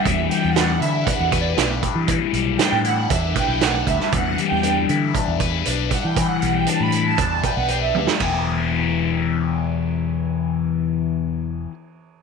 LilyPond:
<<
  \new Staff \with { instrumentName = "String section" } { \time 4/4 \key e \minor \tempo 4 = 118 e''8 g''8 fis''8 e''8 \tuplet 3/2 { fis''4 d''8~ } d''16 r8. | r4 g''8 fis''8 e''8 g''8 fis''8 e''8 | \tuplet 3/2 { fis''4 g''8~ } g''16 r2 r16 fis''16 g''16~ | g''16 fis''8 g''16 a''16 b''8 a''8. g''16 fis''16 g''16 e''8. |
r1 | r1 | }
  \new Staff \with { instrumentName = "Overdriven electric guitar" } { \time 4/4 \key e \minor <e g d' b'>8 g8 d'8 e'8 d'8 b'8 d'8 g8 | e8 g8 d'8 e'8 d'8 b'8 d'8 g8 | e8 g8 d'8 e'8 d'8 b'8 d'8 g8 | e8 g8 d'8 e'8 d'8 b'8 d'8 g8 |
<e b e' g'>1~ | <e b e' g'>1 | }
  \new Staff \with { instrumentName = "Fingered electric bass" } { \clef bass \time 4/4 \key e \minor e,8 r16 e,8. d8 r16 e,8. b,,8 r16 e16~ | e16 r16 b,,8 r16 a,8. e,8 r16 b,,8. d,16 r16 | e,8 r16 e,8. d8 r16 e,8. b,,8 r16 e16~ | e16 r16 b,,8 r16 a,8. e,8 r16 b,,8. d,16 r16 |
e,,1~ | e,,1 | }
  \new DrumStaff \with { instrumentName = "Drums" } \drummode { \time 4/4 <hh bd>8 hh8 <hh sn>8 hh8 <hh bd>8 <hh bd>8 <hh sn>8 <hh bd>8 | <hh bd>8 hh8 <hh sn>8 hh8 <hh bd>8 <hh bd>8 <hh sn>8 <hh bd>16 sn16 | <hh bd>8 hh8 hh8 hh8 <hh bd>8 <hh bd>8 hh8 <hh bd>8 | <hh bd>8 hh8 hh8 hh8 <hh bd>8 <hh bd>8 hh8 tommh16 sn16 |
<bd cymr>4 r4 r4 r4 | r4 r4 r4 r4 | }
>>